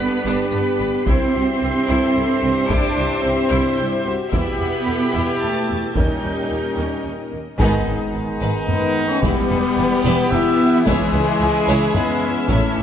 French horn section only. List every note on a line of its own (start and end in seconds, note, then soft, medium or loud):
0.00 0.24 A4 medium
0.26 1.05 G4 medium
1.07 1.34 E4 medium
1.34 1.60 F#4 medium
1.61 1.88 G4 medium
1.89 2.52 A4 loud
2.69 2.96 G4 medium
2.97 3.77 G4 medium
3.79 4.05 E4 medium
4.05 4.32 F#4 medium
4.32 4.87 G4 medium
4.86 5.13 A4 medium
5.13 5.95 G4 medium
5.96 7.29 G4 medium
7.59 8.64 G#3 loud
8.67 9.09 B3 loud
9.10 9.23 C#4 loud
9.23 10.31 B3 loud
10.32 10.86 E4 loud
10.87 11.95 G#3 loud
11.95 12.49 B3 loud
12.49 12.83 A3 medium